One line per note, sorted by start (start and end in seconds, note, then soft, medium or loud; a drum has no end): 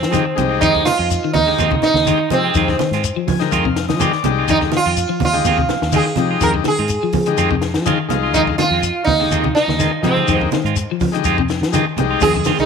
0.00 0.21 F3 medium
0.00 0.35 C4 medium
0.00 snare medium
0.00 closed hi-hat soft
0.12 0.25 D#3 medium
0.12 0.32 D#3 medium
0.12 0.25 G#3 medium
0.12 0.24 G#3 medium
0.12 0.24 C4 medium
0.12 0.25 D#4 medium
0.12 0.24 F4 medium
0.12 0.26 G4 medium
0.12 closed hi-hat medium
0.12 high conga medium
0.12 shekere medium
0.25 muted clean electric guitar stroke soft
0.36 0.62 C2 medium
0.36 0.56 C3 medium
0.36 0.82 G#3 medium
0.36 0.83 D#4 medium
0.36 0.83 G4 loud
0.36 muted clean electric guitar stroke soft
0.36 closed hi-hat soft
0.36 high conga medium
0.36 low conga medium
0.36 shekere soft
0.49 0.60 G#3 soft
0.49 0.60 C4 soft
0.49 muted clean electric guitar stroke medium
0.61 0.90 F2 loud
0.61 0.74 D#3 medium
0.61 0.72 D#3 medium
0.61 0.73 C4 medium
0.61 0.86 D#4 loud
0.61 0.73 F4 medium
0.61 muted clean electric guitar stroke medium
0.61 kick medium
0.61 closed hi-hat medium
0.61 shekere medium
0.74 0.84 D3 medium
0.74 muted clean electric guitar stroke soft
0.74 kick medium
0.85 1.31 F4 loud
0.85 muted clean electric guitar stroke soft
0.85 snare medium
0.85 closed hi-hat soft
0.85 high conga medium
0.85 shekere soft
0.98 1.17 F2 medium
0.98 1.09 G#3 soft
0.98 1.09 F4 medium
1.10 muted clean electric guitar stroke soft
1.10 closed hi-hat medium
1.10 shekere medium
1.24 1.41 D#3 medium
1.33 1.53 D#2 medium
1.33 1.82 D#4 medium
1.33 kick medium
1.33 open hi-hat medium
1.33 high conga medium
1.33 low conga medium
1.33 shekere soft
1.46 1.65 D3 medium
1.46 1.75 G#3 medium
1.46 1.75 D#4 medium
1.46 1.76 G4 medium
1.46 muted clean electric guitar stroke soft
1.58 1.77 D#2 medium
1.58 1.71 D#3 medium
1.58 1.71 G#3 medium
1.58 1.71 C4 medium
1.58 1.71 F4 medium
1.58 closed hi-hat medium
1.58 low conga medium
1.58 shekere medium
1.71 1.89 C3 medium
1.71 muted clean electric guitar stroke soft
1.71 kick medium
1.71 high conga medium
1.82 2.28 D#4 medium
1.82 muted clean electric guitar stroke soft
1.82 snare medium
1.82 closed hi-hat soft
1.82 low conga medium
1.82 shekere soft
1.94 2.13 D#2 medium
1.94 snare medium
1.94 high conga medium
2.05 2.20 D#3 medium
2.05 2.25 D#3 medium
2.05 2.19 G#3 medium
2.05 2.20 G#3 medium
2.05 2.20 C4 medium
2.05 2.19 D#4 medium
2.05 2.19 F4 medium
2.05 2.19 G4 medium
2.05 closed hi-hat medium
2.05 high conga medium
2.05 shekere medium
2.21 muted clean electric guitar stroke soft
2.30 2.49 C3 medium
2.30 2.49 F3 medium
2.30 2.77 G#3 medium
2.30 2.77 C4 medium
2.30 2.77 D#4 medium
2.30 2.78 G4 medium
2.30 muted clean electric guitar stroke soft
2.30 closed hi-hat soft
2.30 high conga medium
2.30 low conga medium
2.30 shekere soft
2.44 2.56 G#3 soft
2.44 2.56 C4 soft
2.44 2.55 F4 soft
2.54 2.74 F2 medium
2.54 2.65 D#3 medium
2.54 2.69 D#3 medium
2.54 2.69 G#3 medium
2.54 2.69 C4 medium
2.54 2.69 F4 medium
2.54 kick medium
2.54 closed hi-hat medium
2.54 shekere medium
2.68 2.76 D3 medium
2.68 muted clean electric guitar stroke soft
2.68 kick medium
2.68 snare soft
2.79 2.97 D#3 medium
2.79 muted clean electric guitar stroke soft
2.79 snare medium
2.79 closed hi-hat medium
2.79 high conga medium
2.79 shekere soft
2.91 3.10 G#2 medium
2.91 3.04 G#3 soft
2.91 3.04 C4 medium
2.91 3.04 F4 medium
2.91 snare soft
2.91 closed hi-hat soft
3.04 muted clean electric guitar stroke soft
3.04 closed hi-hat medium
3.04 shekere medium
3.16 3.34 F3 medium
3.27 3.46 F3 medium
3.27 3.40 G#5 medium
3.27 kick medium
3.27 open hi-hat medium
3.27 high conga medium
3.27 low conga medium
3.27 shekere soft
3.39 3.59 D3 medium
3.39 3.68 G#3 medium
3.39 3.68 D#4 medium
3.39 3.69 A#4 medium
3.39 3.51 G5 medium
3.39 muted clean electric guitar stroke soft
3.39 snare soft
3.39 closed hi-hat medium
3.51 3.91 F2 medium
3.51 3.65 D#3 medium
3.51 3.65 G#3 medium
3.51 3.65 C4 medium
3.51 3.64 F4 medium
3.51 3.86 F5 medium
3.51 kick medium
3.51 closed hi-hat medium
3.51 shekere medium
3.65 3.83 C3 medium
3.65 muted clean electric guitar stroke soft
3.65 kick medium
3.76 muted clean electric guitar stroke soft
3.76 snare medium
3.76 closed hi-hat soft
3.76 shekere soft
3.89 4.08 F3 medium
3.89 3.99 D#5 medium
3.89 snare medium
3.89 closed hi-hat medium
3.89 high conga medium
3.99 4.13 D#3 medium
3.99 4.18 D#3 medium
3.99 4.12 G#3 medium
3.99 4.13 G#3 medium
3.99 4.13 C4 medium
3.99 4.12 D#4 medium
3.99 4.12 F4 medium
3.99 4.13 G4 loud
3.99 4.45 D5 medium
3.99 closed hi-hat medium
3.99 high conga medium
3.99 shekere medium
4.13 muted clean electric guitar stroke soft
4.13 snare soft
4.24 4.49 C2 medium
4.24 4.43 C3 medium
4.24 4.70 G#3 medium
4.24 4.71 D#4 medium
4.24 4.71 G4 medium
4.24 muted clean electric guitar stroke soft
4.24 closed hi-hat medium
4.24 high conga medium
4.24 low conga medium
4.24 shekere soft
4.39 4.48 G#3 soft
4.39 4.48 C4 soft
4.39 4.49 F4 soft
4.48 4.77 F2 loud
4.48 4.62 D#3 medium
4.48 4.58 D#3 medium
4.48 4.62 G#3 medium
4.48 4.62 C4 medium
4.48 4.57 D#4 medium
4.48 4.61 F4 medium
4.48 kick medium
4.48 closed hi-hat medium
4.48 shekere medium
4.61 4.70 D3 medium
4.61 muted clean electric guitar stroke soft
4.61 kick medium
4.61 snare soft
4.72 4.91 D#3 medium
4.72 muted clean electric guitar stroke soft
4.72 snare medium
4.72 closed hi-hat soft
4.72 high conga medium
4.72 shekere soft
4.77 5.24 F4 medium
4.86 5.04 F2 medium
4.86 4.97 C4 soft
4.86 4.97 F4 soft
4.86 muted clean electric guitar stroke soft
4.96 muted clean electric guitar stroke soft
4.96 closed hi-hat medium
4.96 shekere medium
5.09 5.27 F3 medium
5.20 5.39 D#2 medium
5.20 kick medium
5.20 open hi-hat medium
5.20 high conga medium
5.20 low conga medium
5.20 shekere soft
5.25 5.68 F4 medium
5.33 5.52 D3 medium
5.33 5.62 G#3 medium
5.33 5.62 D#4 medium
5.33 5.62 G4 medium
5.33 muted clean electric guitar stroke soft
5.45 5.64 D#2 medium
5.45 5.59 D#3 medium
5.45 5.58 G#3 medium
5.45 5.57 C4 medium
5.45 5.57 F4 medium
5.45 closed hi-hat medium
5.45 low conga medium
5.45 shekere medium
5.58 5.76 C3 medium
5.58 muted clean electric guitar stroke soft
5.58 kick medium
5.69 muted clean electric guitar stroke soft
5.69 snare medium
5.69 closed hi-hat soft
5.69 low conga medium
5.69 shekere soft
5.82 6.01 D#2 medium
5.82 snare medium
5.92 6.11 D#3 medium
5.92 6.06 D#3 medium
5.92 6.05 G#3 medium
5.92 6.06 G#3 medium
5.92 6.05 C4 medium
5.92 6.06 D#4 medium
5.92 6.05 F4 medium
5.92 6.06 G4 medium
5.92 6.40 G#4 medium
5.92 closed hi-hat medium
5.92 high conga medium
5.92 shekere medium
6.06 muted clean electric guitar stroke soft
6.06 snare soft
6.16 6.35 C3 medium
6.16 6.36 F3 medium
6.16 6.63 G#3 medium
6.16 6.64 D#4 medium
6.16 6.64 G4 medium
6.16 muted clean electric guitar stroke soft
6.16 closed hi-hat soft
6.16 high conga medium
6.16 low conga medium
6.16 shekere soft
6.31 6.40 G#3 soft
6.31 6.41 F4 soft
6.31 muted clean electric guitar stroke soft
6.41 6.60 F2 medium
6.41 6.54 D#3 medium
6.41 6.51 D#3 medium
6.41 6.54 C4 medium
6.41 6.50 A#4 medium
6.41 muted clean electric guitar stroke medium
6.41 kick medium
6.41 closed hi-hat medium
6.41 shekere medium
6.54 6.63 D3 medium
6.54 muted clean electric guitar stroke soft
6.54 kick medium
6.64 6.83 D#3 medium
6.64 7.12 G#4 medium
6.64 muted clean electric guitar stroke soft
6.64 snare medium
6.64 closed hi-hat soft
6.64 high conga medium
6.64 shekere soft
6.77 6.97 G#2 medium
6.77 6.90 G#3 soft
6.77 6.90 C4 soft
6.77 6.90 F4 soft
6.77 closed hi-hat medium
6.88 muted clean electric guitar stroke soft
6.88 closed hi-hat medium
6.88 shekere medium
7.03 7.21 F3 medium
7.12 7.32 F3 medium
7.12 kick medium
7.12 open hi-hat medium
7.12 high conga medium
7.12 low conga medium
7.12 shekere soft
7.26 7.45 D3 medium
7.26 7.55 G#3 medium
7.26 7.56 D#4 medium
7.26 7.56 G4 medium
7.26 muted clean electric guitar stroke soft
7.26 closed hi-hat soft
7.37 7.76 F2 loud
7.37 7.51 D#3 medium
7.37 7.50 G#3 medium
7.37 7.50 C4 medium
7.37 7.50 F4 loud
7.37 closed hi-hat medium
7.37 shekere medium
7.51 7.69 C3 medium
7.51 muted clean electric guitar stroke soft
7.51 kick medium
7.62 muted clean electric guitar stroke soft
7.62 snare medium
7.62 closed hi-hat soft
7.62 shekere soft
7.74 7.94 F3 medium
7.74 snare medium
7.74 closed hi-hat medium
7.86 7.99 D#3 medium
7.86 8.05 D#3 medium
7.86 7.98 G#3 medium
7.86 7.99 G#3 medium
7.86 7.99 C4 medium
7.86 7.98 D#4 medium
7.86 7.99 F4 medium
7.86 7.99 F4 loud
7.86 closed hi-hat medium
7.86 high conga medium
7.86 shekere medium
8.00 muted clean electric guitar stroke soft
8.09 8.34 C2 medium
8.09 8.56 G#3 medium
8.09 8.56 D#4 medium
8.09 8.57 F4 medium
8.09 muted clean electric guitar stroke soft
8.09 closed hi-hat soft
8.09 high conga medium
8.09 low conga medium
8.09 shekere soft
8.23 8.34 G#3 soft
8.23 8.35 F4 medium
8.34 8.63 F2 loud
8.34 8.48 D#3 medium
8.34 8.46 D#3 medium
8.34 8.48 G#3 medium
8.34 8.48 C4 medium
8.34 8.41 D#4 medium
8.34 8.48 F4 medium
8.34 kick medium
8.34 closed hi-hat medium
8.34 shekere medium
8.47 8.57 D3 medium
8.47 muted clean electric guitar stroke soft
8.47 kick medium
8.58 8.78 D#3 medium
8.58 9.04 F4 loud
8.58 muted clean electric guitar stroke soft
8.58 snare medium
8.58 closed hi-hat soft
8.58 high conga medium
8.58 shekere soft
8.71 8.90 F2 medium
8.71 8.82 G#3 soft
8.71 8.83 C4 soft
8.71 8.83 F4 medium
8.83 muted clean electric guitar stroke soft
8.83 closed hi-hat medium
8.83 shekere medium
9.04 9.26 D#2 medium
9.04 9.51 D#4 medium
9.04 kick medium
9.04 open hi-hat medium
9.04 high conga medium
9.04 low conga medium
9.04 shekere soft
9.19 9.39 D3 medium
9.19 9.48 G#3 medium
9.19 9.49 D#4 medium
9.19 9.49 G4 medium
9.19 muted clean electric guitar stroke soft
9.31 9.50 D#2 medium
9.31 9.44 D#3 medium
9.31 9.45 G#3 medium
9.31 9.44 C4 medium
9.31 muted clean electric guitar stroke medium
9.31 closed hi-hat medium
9.31 shekere medium
9.44 9.63 C3 medium
9.44 muted clean electric guitar stroke soft
9.44 kick medium
9.44 high conga medium
9.55 10.00 D#4 medium
9.55 muted clean electric guitar stroke soft
9.55 snare medium
9.55 closed hi-hat soft
9.55 shekere soft
9.68 9.87 D#2 medium
9.68 snare medium
9.68 high conga medium
9.78 9.98 D#3 medium
9.78 9.91 G#3 medium
9.78 9.92 G#3 medium
9.78 9.92 C4 medium
9.78 9.92 D#4 medium
9.78 9.92 F4 medium
9.78 9.92 A#4 medium
9.78 snare soft
9.78 closed hi-hat medium
9.78 high conga medium
9.78 shekere medium
9.93 muted clean electric guitar stroke soft
10.02 10.22 C3 medium
10.02 10.22 F3 medium
10.02 10.49 G#3 medium
10.02 10.49 C4 medium
10.02 10.50 D#4 medium
10.02 10.50 G4 medium
10.02 muted clean electric guitar stroke soft
10.02 closed hi-hat soft
10.02 high conga medium
10.02 low conga medium
10.02 shekere soft
10.17 10.27 G#3 soft
10.17 10.27 C4 soft
10.17 10.28 F4 soft
10.17 high conga medium
10.28 10.47 F2 medium
10.28 10.41 D#3 medium
10.28 10.38 D#3 medium
10.28 10.41 G#3 medium
10.28 10.41 C4 medium
10.28 10.41 F4 medium
10.28 kick medium
10.28 closed hi-hat medium
10.28 shekere medium
10.41 10.51 D3 medium
10.41 muted clean electric guitar stroke soft
10.41 kick medium
10.51 10.71 D#3 medium
10.51 muted clean electric guitar stroke soft
10.51 snare medium
10.51 closed hi-hat soft
10.51 high conga medium
10.51 shekere soft
10.64 10.83 G#2 medium
10.64 10.76 G#3 soft
10.64 10.76 C4 soft
10.64 10.76 F4 medium
10.64 closed hi-hat soft
10.76 muted clean electric guitar stroke soft
10.76 closed hi-hat medium
10.76 shekere medium
10.91 11.08 F3 medium
11.00 11.19 F3 medium
11.00 kick medium
11.00 open hi-hat medium
11.00 high conga medium
11.00 low conga medium
11.00 shekere soft
11.12 11.33 D3 medium
11.12 11.41 G#3 medium
11.12 11.42 D#4 medium
11.12 11.42 G4 medium
11.12 muted clean electric guitar stroke soft
11.12 closed hi-hat medium
11.24 11.63 F2 medium
11.24 11.38 G#3 medium
11.24 11.38 C4 medium
11.24 11.37 F4 loud
11.24 muted clean electric guitar stroke medium
11.24 kick medium
11.24 closed hi-hat medium
11.24 shekere medium
11.38 11.56 C3 medium
11.38 muted clean electric guitar stroke soft
11.38 kick medium
11.49 muted clean electric guitar stroke soft
11.49 snare medium
11.49 closed hi-hat soft
11.49 shekere soft
11.61 11.80 F3 medium
11.61 snare medium
11.61 closed hi-hat medium
11.72 11.86 D#3 medium
11.72 11.92 D#3 medium
11.72 11.85 G#3 medium
11.72 11.86 G#3 medium
11.72 11.86 C4 medium
11.72 11.85 D#4 medium
11.72 11.85 F4 medium
11.72 11.86 G4 loud
11.72 closed hi-hat medium
11.72 high conga medium
11.72 shekere medium
11.86 muted clean electric guitar stroke soft
11.96 12.15 C2 medium
11.96 12.16 C3 medium
11.96 12.22 G#3 medium
11.96 12.22 D#4 medium
11.96 12.23 G4 medium
11.96 muted clean electric guitar stroke soft
11.96 closed hi-hat medium
11.96 high conga medium
11.96 low conga medium
11.96 shekere soft
12.10 12.20 G#3 soft
12.10 12.21 C4 medium
12.10 12.21 F4 medium
12.21 12.50 F2 loud
12.21 12.34 D#3 medium
12.21 12.32 D#3 medium
12.21 12.34 G#3 medium
12.21 12.56 G#3 medium
12.21 12.34 C4 medium
12.21 12.33 F4 medium
12.21 12.60 G#4 loud
12.21 kick medium
12.21 crash medium
12.21 low conga medium
12.21 shekere medium
12.34 12.44 D3 medium
12.34 muted clean electric guitar stroke soft
12.34 kick medium
12.34 shekere soft
12.44 12.59 D#3 medium
12.44 12.58 C4 medium
12.44 12.58 F4 medium
12.44 muted clean electric guitar stroke medium
12.44 snare medium
12.44 closed hi-hat medium
12.44 high conga medium
12.44 shekere medium
12.48 12.65 D#3 medium
12.58 12.66 C2 medium
12.58 12.65 D#3 medium
12.58 12.65 D#4 medium
12.58 muted clean electric guitar stroke soft
12.58 snare soft
12.58 shekere soft